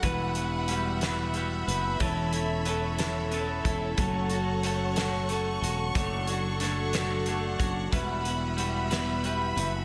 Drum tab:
HH |xxxxxx|xxxxxx|xxxxxx|xxxxxx|
SD |---o--|---o--|---o--|--oo--|
BD |o-----|o----o|o-----|o----o|

HH |xxxxxx|
SD |---o--|
BD |o-----|